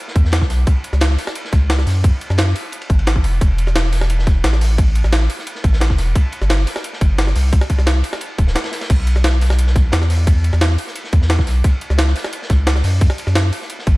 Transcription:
0.08 snare
0.16 sub bass E2, kick, closed hi-hat, ride
0.25 snare
0.32 snare, closed hi-hat, ride
0.41 sub bass B1, kick, snare
0.50 snare, open hi-hat, ride
0.67 kick, closed hi-hat, ride
0.84 closed hi-hat, ride
0.93 sub bass C#2, snare, ride
1.00 snare, closed hi-hat, ride
1.10 snare
1.18 snare, open hi-hat, ride
1.27 snare
1.35 closed hi-hat, ride
1.45 snare
1.53 sub bass C#2, kick, snare, closed hi-hat, ride
1.70 snare, closed hi-hat, ride
1.78 snare
1.87 sub bass F#2, snare, open hi-hat
2.04 kick, closed hi-hat, ride
2.21 closed hi-hat, ride
2.30 sub bass F#2, snare
2.38 snare, closed hi-hat, ride
2.47 snare
2.55 open hi-hat, ride
2.72 closed hi-hat, ride
2.81 ride
2.90 sub bass G#1, kick, closed hi-hat
2.99 ride
3.07 snare, closed hi-hat, ride
3.16 kick
3.24 sub bass E1, open hi-hat, ride
3.41 sub bass E1, kick, closed hi-hat, ride
3.58 closed hi-hat, ride
3.67 snare, ride
3.76 snare, closed hi-hat, ride
3.84 snare
3.92 snare, open hi-hat, ride
4.01 snare
4.10 closed hi-hat, ride
4.19 snare
4.27 kick, snare, closed hi-hat, ride
4.44 sub bass A1, snare, closed hi-hat, ride
4.52 snare
4.61 snare, open hi-hat
4.78 kick, closed hi-hat, ride
4.95 closed hi-hat, ride
5.04 sub bass A1, snare
5.13 snare, closed hi-hat, ride
5.21 snare
5.30 open hi-hat, ride
5.39 snare
5.47 closed hi-hat, ride
5.55 snare
5.64 sub bass A1, kick, closed hi-hat, ride
5.73 snare
5.80 snare, closed hi-hat, ride
5.90 sub bass E1, kick, snare
5.98 snare, open hi-hat, ride
6.15 kick, closed hi-hat, ride
6.32 closed hi-hat, ride
6.41 sub bass G1, snare, ride
6.50 snare, closed hi-hat, ride
6.59 snare
6.67 snare, open hi-hat, ride
6.76 snare
6.84 closed hi-hat, ride
6.93 snare
7.01 sub bass G1, kick, closed hi-hat, ride
7.18 snare, closed hi-hat, ride
7.27 snare
7.36 sub bass C2, snare, open hi-hat
7.53 kick, closed hi-hat, ride
7.61 snare
7.70 kick, closed hi-hat, ride
7.79 sub bass C2, snare
7.87 snare, closed hi-hat, ride
7.95 snare
8.04 open hi-hat, ride
8.12 snare
8.21 closed hi-hat, ride
8.38 sub bass D1, kick, closed hi-hat, ride
8.47 snare
8.55 snare, closed hi-hat, ride
8.64 snare, ride
8.72 snare, open hi-hat, ride
8.81 snare, ride
8.90 sub bass B1, kick, closed hi-hat, ride, crash
9.07 closed hi-hat, ride
9.16 snare, ride
9.24 snare, closed hi-hat, ride
9.32 snare
9.41 snare, open hi-hat, ride
9.50 snare
9.59 closed hi-hat, ride
9.67 snare
9.76 kick, snare, closed hi-hat, ride
9.92 sub bass E2, snare, closed hi-hat, ride
10.01 snare
10.10 snare, open hi-hat
10.27 kick, closed hi-hat, ride
10.44 closed hi-hat, ride
10.53 sub bass E2, snare
10.61 snare, closed hi-hat, ride
10.70 snare
10.78 open hi-hat, ride
10.87 snare
10.96 closed hi-hat, ride
11.04 snare
11.13 sub bass E2, kick, closed hi-hat, ride
11.22 snare
11.30 snare, closed hi-hat, ride
11.39 sub bass B1, kick, snare
11.47 snare, open hi-hat, ride
11.64 kick, closed hi-hat, ride
11.81 closed hi-hat, ride
11.90 sub bass C#2, snare, ride
11.98 snare, closed hi-hat, ride
12.07 snare
12.16 snare, open hi-hat, ride
12.24 snare
12.33 closed hi-hat, ride
12.42 snare
12.50 sub bass C#2, kick, snare, closed hi-hat, ride
12.67 snare, closed hi-hat, ride
12.76 snare
12.84 sub bass F#2, snare, open hi-hat
13.01 kick, closed hi-hat, ride
13.10 snare
13.18 closed hi-hat, ride
13.27 sub bass F#2, snare
13.35 snare, closed hi-hat, ride
13.44 snare
13.52 open hi-hat, ride
13.62 snare
13.70 closed hi-hat, ride
13.79 snare
13.87 sub bass G#1, kick, closed hi-hat, ride

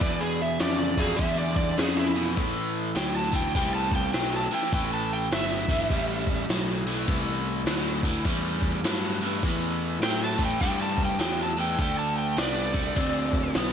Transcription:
0.01 overdriven electric guitar E2 B2, picked electric bass E2, electric slide guitar D5, kick, open hi-hat
0.21 electric slide guitar G#4
0.42 electric slide guitar E5
0.60 overdriven electric guitar E2 C#3, picked electric bass F2, electric slide guitar D5, snare, open hi-hat
0.79 electric slide guitar D5
0.97 overdriven electric guitar E2 B2, electric slide guitar G#4, kick
1.17 overdriven electric guitar E2 D3, picked electric bass E2, electric slide guitar E5, kick, open hi-hat
1.37 electric slide guitar D5
1.56 electric slide guitar D5, kick
1.77 overdriven electric guitar E2 C#3, picked electric bass F2, electric slide guitar G#4, snare, open hi-hat
1.97 electric slide guitar E4
2.15 overdriven electric guitar E2 B2
2.36 overdriven electric guitar A2 E3, picked electric bass A2, kick, crash
2.95 picked electric bass D2, overdriven electric guitar A2 F#3, electric slide guitar G5, snare, crash
3.17 electric slide guitar A5
3.32 overdriven electric guitar A2 E3, electric slide guitar G5, kick
3.55 picked electric bass C2, overdriven electric guitar A2 G3, electric slide guitar G5, kick, crash
3.75 electric slide guitar A5
3.92 kick
3.96 electric slide guitar G5
4.13 picked electric bass B1, overdriven electric guitar A2 F#3, electric slide guitar G5, snare, crash
4.36 electric slide guitar A5
4.51 overdriven electric guitar A2 E3, electric slide guitar G5, muted picked electric bass stroke
4.63 snare
4.72 picked electric bass A1, overdriven electric guitar A2 E3, electric slide guitar G5, kick, crash
4.94 electric slide guitar A5
5.13 electric slide guitar G5
5.31 picked electric bass G1, overdriven electric guitar A2 F#3, electric slide guitar E5, snare, crash
5.69 overdriven electric guitar A2 E3, kick
5.90 picked electric bass A1, overdriven electric guitar A2 G3, kick, crash
6.27 kick
6.49 picked electric bass B1, overdriven electric guitar A2 F#3, snare, crash
6.87 overdriven electric guitar A2 E3
7.07 picked electric bass C2, overdriven electric guitar A2 E3, kick, crash
7.65 picked electric bass D2, overdriven electric guitar A2 F#3, snare, crash
8.03 overdriven electric guitar A2 E3, kick
8.25 picked electric bass E2, overdriven electric guitar A2 G3, kick, crash
8.62 kick
8.84 picked electric bass G2, overdriven electric guitar A2 F#3, snare, crash
9.21 overdriven electric guitar A2 E3
9.43 picked electric bass E2, overdriven electric guitar A2 E3, kick, crash
10.00 picked electric bass A2, overdriven electric guitar A2 F#3, electric slide guitar G5, snare, crash
10.24 electric slide guitar A5
10.37 overdriven electric guitar A2 E3, kick
10.45 electric slide guitar G5
10.60 picked electric bass G2, overdriven electric guitar A2 G3, electric slide guitar G5, kick, crash
10.82 electric slide guitar A5
10.98 kick
11.05 electric slide guitar G5
11.19 picked electric bass E2, overdriven electric guitar A2 F#3, electric slide guitar G5, snare, crash
11.43 electric slide guitar A5
11.57 overdriven electric guitar A2 E3, electric slide guitar G5
11.79 picked electric bass D2, overdriven electric guitar D3 A3, electric slide guitar G5, kick, crash
11.99 electric slide guitar A5
12.18 electric slide guitar G5
12.37 picked electric bass C2, overdriven electric guitar D3 B3, electric slide guitar D5, snare, crash
12.74 overdriven electric guitar D3 A3, kick
12.96 picked electric bass D2, overdriven electric guitar D3 C4, kick, crash
13.33 kick
13.54 picked electric bass B1, overdriven electric guitar D3 B3, snare, crash

